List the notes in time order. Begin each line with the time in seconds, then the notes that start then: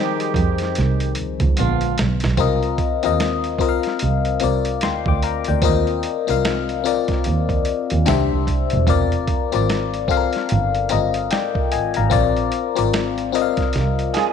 Already playing: D#3 F3 G3 C4 D#4 G4 G#4 A#4 C5
0.20 closed hi-hat
0.34 F2, kick, closed hi-hat
0.58 snare, closed hi-hat
0.75 C2, snare, closed hi-hat
1.00 closed hi-hat
1.15 closed hi-hat
1.19 C#2
1.40 C#2, kick, closed hi-hat
1.57 A#1 D3 F3 G#3 B3 D4 F4, closed hi-hat
1.81 closed hi-hat
1.98 B1, snare, closed hi-hat
2.20 snare, closed hi-hat
2.24 B1
2.37 C2 C4 F4 A#4 D#5, kick, closed hi-hat
2.63 closed hi-hat
2.78 kick, closed hi-hat
3.03 D#2 C4 F4 A#4 D#5, closed hi-hat
3.20 snare, closed hi-hat
3.44 closed hi-hat
3.58 C4 F4 A#4 D#5, kick, closed hi-hat
3.69 F5
3.83 snare, closed hi-hat
3.99 C2, closed hi-hat
4.25 closed hi-hat
4.40 C2 C4 F4 A#4 D5, closed hi-hat
4.65 closed hi-hat
4.81 D2 G5 C6, snare, closed hi-hat
5.06 D2 G5 D6, kick
5.22 F5 A#5, closed hi-hat
5.44 G5, closed hi-hat
5.49 D2 D5
5.62 D#2 C4 F4 A#4 D#5, kick, closed hi-hat
5.87 closed hi-hat
6.03 closed hi-hat
6.27 C2 C4 F4 A#4 F5, closed hi-hat
6.45 snare, closed hi-hat
6.69 closed hi-hat
6.84 C4 F4 A#4 D5, closed hi-hat
7.08 kick, snare, closed hi-hat
7.24 D#2, closed hi-hat
7.49 kick, closed hi-hat
7.65 closed hi-hat
7.90 D#2, closed hi-hat
8.06 C2 D4 G4 C5 E5, snare, closed hi-hat
8.32 C2
8.47 kick, closed hi-hat
8.70 E1, closed hi-hat
8.87 F1 C4 F4 A#4 D5, kick, closed hi-hat
9.12 closed hi-hat
9.28 kick, closed hi-hat
9.52 G#1 C4 F4 A#4 D5, closed hi-hat
9.70 snare, closed hi-hat
9.94 closed hi-hat
10.08 C4 F4 A4 F5, kick, closed hi-hat
10.17 A#4
10.33 snare, closed hi-hat
10.49 G1, closed hi-hat
10.75 closed hi-hat
10.89 G1 C4 F4 A#4 D#5, closed hi-hat
11.14 closed hi-hat
11.31 D5 G5, snare, closed hi-hat
11.55 kick
11.72 G#1 D#5 G#5, closed hi-hat
11.94 G#1 F5 A#5, closed hi-hat
12.10 A#1 C4 F4 A#4 D5, kick, closed hi-hat
12.37 closed hi-hat
12.52 closed hi-hat
12.76 G#1 C4 F4 A#4 D5, closed hi-hat
12.94 snare, closed hi-hat
13.18 closed hi-hat
13.32 C4 F4 A#4 D#5, closed hi-hat
13.42 F5
13.57 kick, snare, closed hi-hat
13.73 C2, snare, closed hi-hat
13.99 closed hi-hat
14.14 F4 G#4, snare, closed hi-hat